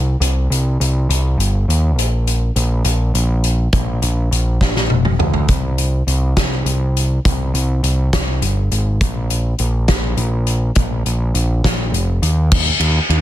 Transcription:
0.00 0.15 C2 medium
0.20 0.47 C2 medium
0.20 closed hi-hat medium
0.50 0.77 C2 medium
0.50 closed hi-hat medium
0.80 1.06 C2 medium
0.80 closed hi-hat medium
1.09 1.36 C2 medium
1.09 closed hi-hat medium
1.38 1.64 G1 medium
1.38 closed hi-hat medium
1.68 1.97 D#2 medium
1.68 closed hi-hat medium
1.97 2.50 A#1 medium
1.97 closed hi-hat medium
2.27 closed hi-hat medium
2.56 2.82 A#1 medium
2.56 closed hi-hat medium
2.84 3.11 A#1 medium
2.84 closed hi-hat medium
3.14 3.67 A#1 medium
3.14 closed hi-hat medium
3.44 closed hi-hat medium
3.73 4.00 A#1 medium
3.73 kick loud
3.73 closed hi-hat medium
4.02 4.29 A#1 medium
4.02 closed hi-hat medium
4.31 4.58 A#1 medium
4.31 closed hi-hat medium
4.61 4.87 A#1 medium
4.61 kick medium
4.61 snare soft
4.76 snare soft
4.90 5.17 F1 medium
4.90 high tom medium
5.05 mid tom medium
5.19 5.46 D2 medium
5.19 mid tom medium
5.34 floor tom medium
5.48 6.02 C2 medium
5.48 kick loud
5.48 closed hi-hat medium
5.78 closed hi-hat medium
6.07 6.34 C2 medium
6.07 closed hi-hat soft
6.37 6.63 C2 medium
6.37 kick medium
6.37 snare medium
6.37 closed hi-hat medium
6.65 7.18 C2 medium
6.65 closed hi-hat medium
6.97 closed hi-hat medium
7.25 7.51 C2 medium
7.25 kick medium
7.25 closed hi-hat medium
7.54 7.80 C2 medium
7.54 closed hi-hat medium
7.83 8.10 C2 medium
7.83 closed hi-hat medium
8.13 8.40 C2 medium
8.13 kick medium
8.13 snare loud
8.13 closed hi-hat medium
8.41 8.68 G1 medium
8.41 closed hi-hat medium
8.71 8.98 G#1 medium
8.71 closed hi-hat medium
9.01 9.53 A#1 medium
9.01 kick loud
9.01 closed hi-hat medium
9.30 closed hi-hat medium
9.59 9.86 A#1 medium
9.59 closed hi-hat medium
9.88 10.15 A#1 medium
9.88 kick medium
9.88 snare loud
9.88 closed hi-hat medium
10.17 10.70 A#1 medium
10.17 closed hi-hat medium
10.47 closed hi-hat medium
10.75 11.02 A#1 medium
10.75 kick loud
10.75 closed hi-hat medium
11.05 11.32 A#1 medium
11.05 closed hi-hat medium
11.34 11.61 A#1 medium
11.34 closed hi-hat medium
11.64 11.90 A#1 medium
11.64 kick medium
11.64 snare loud
11.64 closed hi-hat medium
11.92 12.19 F1 medium
11.92 closed hi-hat medium
12.22 12.51 D#2 medium
12.22 closed hi-hat medium
12.52 12.70 D#2 medium
12.52 kick loud
12.52 crash loud
12.80 12.98 D#2 medium
12.80 ride medium
13.09 13.21 D#2 medium
13.09 ride medium

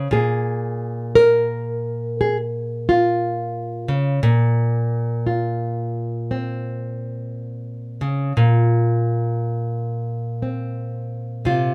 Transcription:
0.00 0.12 G#3 soft
0.00 0.12 C5 medium
0.11 3.89 A#2 medium
0.11 1.15 G#4 medium
1.15 2.18 A#4 loud
2.21 2.37 G#4 medium
2.89 5.25 F4 medium
3.88 4.19 C#3 medium
4.23 8.01 A#2 medium
5.27 11.45 F4 soft
6.31 10.41 C4 medium
8.01 8.32 C#3 medium
8.37 11.74 A#2 medium
10.42 11.74 C4 soft
11.45 11.74 C3 medium
11.45 11.74 F4 medium

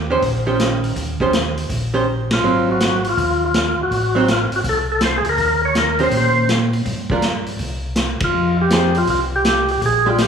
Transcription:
0.00 0.18 D#2 medium
0.11 0.22 D#3 soft
0.11 0.22 C#4 medium
0.11 0.22 G4 medium
0.11 0.22 C5 medium
0.22 0.93 A#1 medium
0.22 kick soft
0.22 open hi-hat soft
0.46 0.93 D#3 soft
0.46 0.94 C#4 soft
0.46 0.94 G4 soft
0.46 0.94 C5 medium
0.60 snare medium
0.60 closed hi-hat soft
0.84 open hi-hat soft
0.96 1.66 D#2 medium
0.96 kick soft
0.96 open hi-hat soft
1.20 1.32 D#3 medium
1.20 1.32 C#4 medium
1.20 1.32 G4 medium
1.20 1.33 C5 medium
1.20 kick soft
1.33 snare medium
1.33 closed hi-hat soft
1.57 open hi-hat soft
1.70 2.40 A#1 medium
1.70 kick soft
1.70 open hi-hat soft
1.94 2.05 D#3 medium
1.94 2.05 C#4 medium
1.94 2.05 G4 soft
1.94 2.06 C5 medium
2.31 2.70 F4 medium
2.31 snare medium
2.31 ride soft
2.42 3.13 G#1 medium
2.42 3.00 F#3 soft
2.42 3.00 C4 soft
2.72 3.07 F#4 medium
2.80 snare medium
2.80 closed hi-hat soft
3.04 open hi-hat soft
3.09 3.45 F4 medium
3.17 3.74 D#2 medium
3.17 kick soft
3.17 open hi-hat soft
3.46 3.81 F4 medium
3.54 snare medium
3.54 closed hi-hat soft
3.78 3.85 D#2 soft
3.83 4.15 F#4 medium
3.91 4.48 A1 medium
3.91 kick soft
3.91 open hi-hat soft
4.15 4.26 F#3 medium
4.15 4.27 C4 medium
4.15 4.27 D#4 medium
4.20 4.25 F#4 medium
4.28 4.41 F4 medium
4.28 snare medium
4.28 closed hi-hat soft
4.50 4.63 G#1 medium
4.50 open hi-hat soft
4.56 4.61 F#4 medium
4.64 5.21 C2 medium
4.64 kick soft
4.64 open hi-hat soft
4.69 4.79 A4 medium
4.92 5.02 A4 medium
5.01 5.18 C5 medium
5.01 snare medium
5.01 closed hi-hat soft
5.18 5.26 G#4 medium
5.25 5.37 D2 medium
5.25 open hi-hat soft
5.29 5.62 A#4 medium
5.38 6.08 D#2 medium
5.38 kick soft
5.38 open hi-hat soft
5.65 5.76 C#5 medium
5.75 6.01 A#4 medium
5.75 snare medium
5.75 closed hi-hat soft
5.99 6.47 D#3 medium
5.99 6.47 C#4 soft
5.99 6.47 G4 medium
5.99 6.47 C5 medium
5.99 open hi-hat soft
6.04 6.14 C5 medium
6.11 6.82 A#2 medium
6.11 kick soft
6.11 open hi-hat soft
6.17 6.49 C5 medium
6.49 snare medium
6.49 closed hi-hat soft
6.73 open hi-hat soft
6.85 7.56 G2 medium
6.85 kick soft
6.85 open hi-hat soft
7.10 7.22 G3 medium
7.10 7.22 D4 medium
7.10 7.22 F4 medium
7.10 7.23 A#4 medium
7.10 kick medium
7.22 snare medium
7.22 closed hi-hat soft
7.46 open hi-hat soft
7.59 8.16 C2 medium
7.59 kick soft
7.59 open hi-hat soft
7.96 snare medium
7.96 closed hi-hat soft
8.20 8.27 C2 soft
8.20 8.57 F4 medium
8.20 kick medium
8.20 ride medium
8.33 9.04 F2 medium
8.61 8.98 G4 medium
8.70 8.93 F3 soft
8.70 8.93 C4 soft
8.70 8.93 D#4 soft
8.70 8.94 G#4 medium
8.70 snare medium
8.70 closed hi-hat soft
8.95 9.08 F4 medium
8.95 open hi-hat soft
9.07 9.78 C2 medium
9.07 9.21 F4 medium
9.07 kick soft
9.07 open hi-hat soft
9.36 9.70 G4 medium
9.45 snare medium
9.45 closed hi-hat soft
9.68 9.82 G4 medium
9.68 open hi-hat soft
9.81 10.27 A#1 medium
9.81 kick soft
9.81 open hi-hat soft
9.86 10.08 G#4 medium
10.06 10.17 G#3 medium
10.06 10.18 D4 medium
10.06 10.21 F4 medium
10.06 10.18 G4 medium
10.18 10.27 G4 medium
10.18 snare medium
10.18 closed hi-hat soft

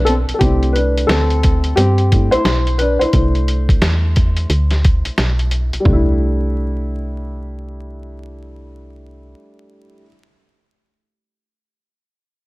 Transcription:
0.00 0.25 B1 medium
0.05 0.14 C4 medium
0.05 0.12 A4 medium
0.05 closed hi-hat medium
0.28 0.33 B1 soft
0.28 closed hi-hat soft
0.34 0.40 A4 medium
0.39 1.06 C2 loud
0.39 2.10 A3 soft
0.39 0.73 C4 medium
0.39 0.74 D4 soft
0.39 2.11 E4 medium
0.39 0.75 G4 medium
0.39 kick medium
0.39 closed hi-hat medium
0.63 closed hi-hat soft
0.73 1.07 D4 medium
0.73 1.09 B4 medium
0.73 closed hi-hat medium
0.98 closed hi-hat soft
1.07 1.74 D2 medium
1.07 1.74 C4 medium
1.07 1.72 A4 medium
1.07 snare loud
1.07 closed hi-hat medium
1.30 closed hi-hat soft
1.43 kick medium
1.43 closed hi-hat medium
1.64 closed hi-hat soft
1.76 2.30 G2 medium
1.76 2.30 C4 medium
1.76 2.34 G4 medium
1.76 closed hi-hat medium
1.98 closed hi-hat soft
2.11 2.42 A3 soft
2.11 2.42 D4 soft
2.11 2.32 E4 soft
2.11 kick medium
2.11 closed hi-hat medium
2.31 2.38 B1 soft
2.31 2.77 E4 medium
2.31 2.75 C5 medium
2.31 closed hi-hat medium
2.45 2.98 B1 medium
2.45 snare loud
2.45 closed hi-hat medium
2.67 closed hi-hat soft
2.78 3.00 D4 medium
2.78 2.99 B4 medium
2.78 closed hi-hat medium
2.99 3.06 B1 soft
2.99 3.13 E4 medium
2.99 5.13 C5 medium
2.99 closed hi-hat soft
3.13 3.78 C2 loud
3.13 5.82 A3 soft
3.13 5.83 D4 soft
3.13 5.83 E4 medium
3.13 kick medium
3.13 closed hi-hat medium
3.35 closed hi-hat soft
3.48 closed hi-hat medium
3.69 kick medium
3.69 closed hi-hat soft
3.82 4.46 E2 medium
3.82 snare loud
3.82 closed hi-hat medium
4.16 kick medium
4.16 closed hi-hat medium
4.37 closed hi-hat soft
4.50 5.03 D2 medium
4.50 closed hi-hat medium
4.71 snare soft
4.71 closed hi-hat soft
4.85 kick medium
4.85 closed hi-hat medium
5.05 5.11 B1 soft
5.05 closed hi-hat medium
5.18 5.71 B1 medium
5.18 snare loud
5.18 closed hi-hat medium
5.39 closed hi-hat soft
5.51 closed hi-hat medium
5.73 5.79 B1 soft
5.73 closed hi-hat soft
5.80 10.02 G3 medium
5.84 9.35 C2 loud
5.84 10.04 A3 medium
5.84 kick medium
5.84 floor tom medium
5.88 10.06 D4 medium
5.93 10.08 E4 medium

